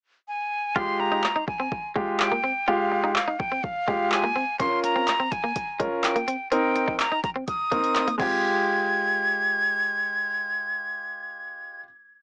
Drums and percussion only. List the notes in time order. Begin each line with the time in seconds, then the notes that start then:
0.76 kick
1.24 clap
1.48 kick
1.72 kick
1.96 kick
2.20 clap
3.16 clap
3.40 kick
3.64 kick
3.88 kick
4.12 clap
4.60 kick, closed hi-hat
4.84 closed hi-hat
5.08 clap, closed hi-hat
5.32 kick, closed hi-hat
5.56 kick, closed hi-hat
5.80 kick, closed hi-hat
6.04 clap, closed hi-hat
6.16 closed hi-hat
6.28 closed hi-hat
6.52 closed hi-hat
6.76 closed hi-hat
6.88 kick
7.00 clap, closed hi-hat
7.24 kick, closed hi-hat
7.48 kick, closed hi-hat
7.72 kick, closed hi-hat
7.84 closed hi-hat
7.96 clap, closed hi-hat
8.08 closed hi-hat
8.20 kick, crash